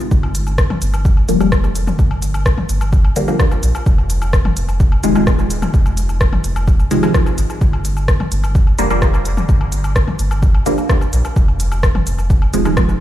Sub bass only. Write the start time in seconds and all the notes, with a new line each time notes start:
0.11 G1
0.82 G1
1.29 F1
1.99 G1
2.69 G1
3.63 A#1
3.86 F1
4.57 F1
5.04 D#1
5.74 F1
6.44 F1
7.38 G#1
7.61 G1
8.32 G1
8.79 F1
9.49 G1
10.19 G1
11.13 A#1
11.36 F1
12.07 F1
12.54 D#1